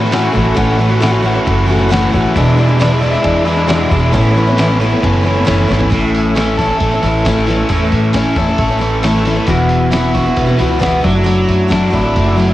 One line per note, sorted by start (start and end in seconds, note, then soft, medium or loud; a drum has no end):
0.00 0.28 A2 medium
0.00 0.13 E3 medium
0.00 0.12 A3 medium
0.00 0.14 C#4 medium
0.00 0.12 C#4 medium
0.00 0.14 E4 medium
0.00 0.12 F#4 medium
0.00 2.33 A4 medium
0.00 2.33 F#5 medium
0.00 2.32 C#6 medium
0.04 0.12 A3 soft
0.04 snare soft
0.11 0.35 A2 medium
0.11 0.31 E3 medium
0.11 0.32 A3 medium
0.11 0.33 C#4 medium
0.11 0.32 E4 loud
0.11 0.35 F#4 loud
0.11 snare loud
0.11 ride bell medium
0.32 0.55 A1 medium
0.32 0.45 E3 medium
0.32 0.44 A3 medium
0.32 0.43 C#4 medium
0.32 0.58 E4 medium
0.32 0.41 F#4 medium
0.32 kick medium
0.43 0.55 A3 soft
0.43 0.55 C#4 soft
0.43 0.56 F#4 medium
0.54 1.36 A1 loud
0.54 0.78 A2 medium
0.54 0.77 E3 medium
0.54 0.78 A3 medium
0.54 0.79 C#4 medium
0.54 0.80 F#4 loud
0.54 kick loud
0.54 ride bell medium
0.59 0.77 E4 loud
0.77 0.90 E3 medium
0.77 0.91 A3 medium
0.77 0.90 C#4 medium
0.77 1.02 E4 medium
0.77 0.88 F#4 medium
0.89 1.00 A3 medium
0.89 1.01 C#4 medium
0.89 1.01 F#4 medium
1.00 1.12 A2 medium
1.00 1.13 E3 medium
1.00 1.13 A3 medium
1.00 1.12 C#4 loud
1.00 1.22 E4 medium
1.00 1.10 F#4 loud
1.00 snare loud
1.00 ride bell medium
1.11 1.22 A3 medium
1.11 1.23 C#4 medium
1.11 1.23 F#4 medium
1.22 1.70 A2 medium
1.22 1.34 E3 medium
1.22 1.35 A3 medium
1.22 1.34 C#4 medium
1.22 1.47 E4 medium
1.22 1.33 F#4 medium
1.34 1.66 A3 medium
1.34 1.67 C#4 medium
1.34 1.68 F#4 medium
1.45 2.06 F#1 medium
1.45 1.90 E3 medium
1.45 1.69 A3 medium
1.45 1.67 C#4 medium
1.45 1.67 E4 medium
1.45 kick loud
1.45 ride bell medium
1.66 1.79 E3 medium
1.66 1.79 A3 medium
1.66 1.79 C#4 medium
1.66 1.92 E4 medium
1.66 1.77 F#4 medium
1.78 1.89 A3 soft
1.78 1.90 C#4 medium
1.78 1.90 F#4 medium
1.89 2.12 A2 medium
1.89 2.11 E3 loud
1.89 2.12 A3 loud
1.89 2.12 C#4 loud
1.89 2.11 E4 loud
1.89 2.13 F#4 loud
1.89 ride bell medium
1.93 snare loud
2.11 2.24 A1 medium
2.11 2.35 E3 medium
2.11 2.36 A3 medium
2.11 2.36 C#4 medium
2.11 2.37 E4 medium
2.11 kick medium
2.15 2.37 F#4 medium
2.35 3.14 E1 loud
2.35 2.58 E2 medium
2.35 2.58 B2 medium
2.35 2.55 E3 medium
2.35 2.56 G#3 loud
2.35 2.58 D4 medium
2.35 2.59 E4 medium
2.35 4.12 G#4 medium
2.35 4.12 E5 medium
2.35 4.11 D6 medium
2.35 kick loud
2.35 ride bell medium
2.57 2.68 E3 medium
2.57 2.68 G#3 medium
2.57 2.67 D4 medium
2.57 2.66 E4 medium
2.67 2.79 E3 medium
2.67 2.79 G#3 medium
2.67 2.80 D4 medium
2.67 2.79 E4 medium
2.79 2.91 E2 medium
2.79 2.91 B2 medium
2.79 2.91 E3 loud
2.79 2.91 G#3 medium
2.79 2.90 D4 medium
2.79 2.89 E4 loud
2.79 snare loud
2.79 ride bell medium
2.90 3.00 E3 medium
2.90 3.01 G#3 medium
2.90 3.02 D4 medium
2.90 3.02 E4 medium
3.01 3.47 E2 medium
3.01 3.47 B2 medium
3.01 3.13 E3 medium
3.01 3.13 G#3 medium
3.01 3.13 D4 medium
3.01 3.12 E4 medium
3.13 3.43 E3 medium
3.13 3.45 G#3 medium
3.13 3.46 D4 medium
3.13 3.46 E4 medium
3.22 3.83 E2 medium
3.22 3.48 E3 medium
3.22 3.46 G#3 medium
3.22 3.45 D4 medium
3.22 3.45 E4 medium
3.22 kick loud
3.22 ride bell medium
3.44 3.57 E3 medium
3.44 3.57 G#3 medium
3.44 3.56 D4 medium
3.48 3.67 E3 medium
3.48 3.54 E4 medium
3.56 3.67 E3 soft
3.56 3.68 G#3 medium
3.56 3.68 D4 medium
3.56 3.68 E4 medium
3.67 3.90 E2 medium
3.67 3.91 B2 medium
3.67 3.89 E3 loud
3.67 3.90 G#3 medium
3.67 3.91 D4 loud
3.67 3.91 E4 medium
3.67 snare loud
3.67 ride bell medium
3.90 4.11 E1 medium
3.90 4.11 E3 medium
3.90 4.13 G#3 medium
3.90 4.13 D4 medium
3.90 4.14 E4 medium
3.90 kick medium
4.13 4.92 A1 loud
4.13 4.35 A2 medium
4.13 4.34 E3 medium
4.13 4.36 A3 loud
4.13 4.36 B3 medium
4.13 4.36 C#4 medium
4.13 4.37 E4 loud
4.13 5.90 A4 medium
4.13 5.90 C#5 medium
4.13 5.90 B5 medium
4.13 kick loud
4.13 ride bell medium
4.34 4.46 E3 medium
4.34 4.57 A3 medium
4.34 4.48 B3 medium
4.34 4.48 C#4 medium
4.34 4.59 E4 medium
4.39 4.46 E4 medium
4.47 4.58 B3 medium
4.47 4.59 C#4 medium
4.47 4.58 E4 medium
4.57 4.69 A2 medium
4.57 4.70 E3 medium
4.57 4.80 A3 medium
4.57 4.70 B3 loud
4.57 4.69 C#4 medium
4.57 4.68 E4 loud
4.57 snare loud
4.57 ride bell medium
4.69 4.80 B3 medium
4.69 4.80 C#4 medium
4.69 4.80 E4 medium
4.79 5.26 A2 medium
4.79 4.91 E3 medium
4.79 5.01 A3 medium
4.79 4.91 B3 medium
4.79 4.90 C#4 medium
4.79 5.04 E4 loud
4.83 4.89 E4 medium
4.90 5.23 B3 soft
4.90 5.24 C#4 medium
4.90 5.24 E4 medium
5.01 5.42 F#1 loud
5.01 5.46 E3 medium
5.01 5.26 A3 medium
5.01 5.24 C#4 medium
5.01 5.23 E4 medium
5.01 kick loud
5.01 ride bell medium
5.23 5.35 E3 medium
5.23 5.35 B3 medium
5.23 5.36 C#4 medium
5.23 5.34 E4 medium
5.27 5.47 A3 medium
5.36 5.44 B3 soft
5.36 5.45 C#4 soft
5.36 5.45 E4 medium
5.45 5.68 F#1 medium
5.45 5.68 A2 medium
5.45 5.66 E3 medium
5.45 5.71 A3 medium
5.45 5.67 B3 medium
5.45 5.68 C#4 loud
5.45 5.69 E4 loud
5.45 snare loud
5.45 ride bell medium
5.67 5.90 G#1 medium
5.67 5.79 E3 medium
5.67 5.79 B3 medium
5.67 5.78 C#4 medium
5.67 5.77 E4 medium
5.72 5.91 A3 medium
5.72 snare medium
5.78 5.90 B3 soft
5.78 5.91 C#4 medium
5.78 5.90 E4 medium
5.78 floor tom medium
5.90 6.70 A1 medium
5.90 6.34 A2 medium
5.90 6.36 E3 medium
5.90 6.36 A3 medium
5.90 6.36 C#4 medium
5.90 6.37 E4 medium
5.90 kick loud
5.90 open hi-hat medium
5.94 9.46 A4 medium
5.94 12.54 E5 medium
5.94 9.46 C#6 medium
6.15 open hi-hat medium
6.35 6.58 A2 medium
6.35 6.58 E3 medium
6.35 6.58 A3 medium
6.35 6.59 C#4 medium
6.35 6.59 E4 medium
6.35 snare loud
6.35 open hi-hat medium
6.58 6.70 E3 medium
6.58 6.70 A3 medium
6.58 6.69 C#4 medium
6.58 6.67 E4 medium
6.58 7.69 A4 medium
6.58 kick medium
6.58 open hi-hat medium
6.68 6.92 C#4 medium
6.68 6.90 E4 medium
6.72 6.93 A3 soft
6.79 7.00 A1 medium
6.79 7.23 A3 medium
6.79 kick loud
6.79 open hi-hat medium
6.92 7.03 A3 medium
6.92 7.04 C#4 medium
6.92 7.03 E4 medium
7.03 7.62 A1 medium
7.03 7.25 E3 medium
7.03 7.26 A3 medium
7.03 7.27 C#4 medium
7.03 open hi-hat medium
7.07 7.27 E4 medium
7.25 7.48 A2 medium
7.25 7.47 E3 medium
7.25 7.48 A3 medium
7.25 7.49 C#4 medium
7.25 7.49 E4 loud
7.25 kick medium
7.25 snare loud
7.25 open hi-hat medium
7.37 snare soft
7.47 7.59 E3 medium
7.47 7.60 A3 medium
7.47 7.58 C#4 medium
7.47 7.56 E4 medium
7.47 open hi-hat medium
7.57 7.69 C#4 medium
7.57 7.69 E4 medium
7.61 7.69 A3 soft
7.69 7.89 E2 medium
7.69 8.12 A2 medium
7.69 8.13 E3 medium
7.69 8.13 A3 medium
7.69 8.15 C#4 medium
7.69 8.16 E4 medium
7.69 kick loud
7.69 open hi-hat medium
7.92 8.32 A2 medium
7.92 open hi-hat medium
8.13 8.36 A2 medium
8.13 8.35 E3 medium
8.13 8.35 A3 medium
8.13 8.37 C#4 medium
8.13 8.37 E4 loud
8.13 kick medium
8.13 snare loud
8.13 open hi-hat medium
8.36 8.56 E2 medium
8.36 8.47 E3 medium
8.36 8.48 A3 medium
8.36 8.48 C#4 medium
8.36 8.45 E4 medium
8.36 9.49 A4 medium
8.36 kick medium
8.36 open hi-hat medium
8.46 8.69 C#4 medium
8.46 8.67 E4 medium
8.51 8.71 A3 medium
8.58 9.38 A1 medium
8.58 9.02 A3 medium
8.58 kick loud
8.58 open hi-hat medium
8.68 8.81 C#4 medium
8.68 8.80 E4 medium
8.72 8.79 A3 soft
8.79 9.01 E3 medium
8.79 9.02 A3 medium
8.79 9.03 C#4 medium
8.79 open hi-hat medium
8.83 9.04 E4 medium
9.03 9.25 A2 medium
9.03 9.24 E3 medium
9.03 9.25 A3 medium
9.03 9.26 C#4 medium
9.03 9.26 E4 medium
9.03 snare loud
9.03 open hi-hat medium
9.16 snare soft
9.25 9.37 E3 medium
9.25 9.37 A3 medium
9.25 9.35 C#4 medium
9.25 9.35 E4 medium
9.25 open hi-hat medium
9.36 9.48 A3 soft
9.36 9.48 C#4 medium
9.36 9.48 E4 medium
9.47 10.27 E1 medium
9.47 9.90 E2 medium
9.47 9.90 B2 medium
9.47 9.92 E3 medium
9.47 9.92 B3 medium
9.47 9.92 E4 medium
9.47 11.03 F#4 medium
9.47 9.93 F#4 medium
9.47 11.03 B5 medium
9.47 kick loud
9.47 open hi-hat medium
9.69 open hi-hat medium
9.91 10.14 E2 medium
9.91 10.15 B2 medium
9.91 10.13 E3 medium
9.91 10.14 B3 medium
9.91 10.15 E4 medium
9.91 10.15 F#4 medium
9.91 snare loud
9.91 open hi-hat medium
10.14 10.26 E3 medium
10.14 10.26 B3 medium
10.14 10.25 E4 medium
10.14 10.24 F#4 medium
10.14 kick medium
10.14 open hi-hat medium
10.25 10.49 E3 soft
10.25 10.48 B3 medium
10.25 10.47 E4 medium
10.25 10.45 F#4 medium
10.36 10.57 E1 medium
10.36 10.80 B3 medium
10.36 kick loud
10.36 open hi-hat medium
10.46 10.57 E3 medium
10.46 10.59 B3 medium
10.46 10.59 E4 medium
10.46 10.59 F#4 medium
10.58 10.99 C#2 medium
10.58 10.70 E3 medium
10.58 10.70 B3 medium
10.58 10.68 E4 medium
10.58 10.67 F#4 medium
10.58 open hi-hat medium
10.69 10.79 E3 soft
10.69 10.80 B3 soft
10.69 10.79 E4 soft
10.69 10.81 F#4 medium
10.79 11.03 E2 medium
10.79 11.03 B2 medium
10.79 11.01 E3 medium
10.79 11.02 B3 medium
10.79 11.03 E4 medium
10.79 11.03 F#4 loud
10.79 kick medium
10.79 open hi-hat medium
10.83 snare loud
11.01 11.44 F#1 loud
11.01 11.14 F#3 medium
11.01 11.14 A3 medium
11.01 11.13 D4 medium
11.01 11.12 E4 medium
11.01 12.54 F#4 medium
11.01 12.54 D6 medium
11.01 kick loud
11.01 open hi-hat medium
11.05 11.26 F#3 medium
11.13 11.23 A3 soft
11.13 11.23 D4 medium
11.13 11.24 E4 medium
11.24 11.67 F#3 medium
11.24 11.69 A3 medium
11.24 11.69 D4 medium
11.24 11.70 E4 medium
11.24 open hi-hat medium
11.49 11.88 F#2 medium
11.49 open hi-hat medium
11.68 11.89 F#3 medium
11.68 11.89 A3 medium
11.68 11.91 D4 medium
11.68 11.91 E4 medium
11.68 kick medium
11.68 open hi-hat medium
11.72 snare loud
11.90 12.13 A1 medium
11.90 12.03 F#3 medium
11.90 12.02 A3 medium
11.90 12.02 D4 medium
11.90 12.00 E4 medium
11.90 kick medium
11.90 open hi-hat medium
12.01 12.25 A3 soft
12.01 12.25 D4 medium
12.01 12.23 E4 medium
12.16 12.54 F#1 loud
12.16 12.54 A3 medium
12.16 kick loud
12.16 open hi-hat medium
12.24 12.36 A3 medium
12.24 12.36 D4 medium
12.24 12.37 E4 medium
12.35 12.48 F#3 medium
12.35 12.48 A3 medium
12.35 12.46 D4 medium
12.35 12.45 E4 medium
12.39 12.54 F#3 medium
12.39 open hi-hat medium
12.46 12.54 A3 soft
12.46 12.54 D4 soft
12.46 12.54 E4 soft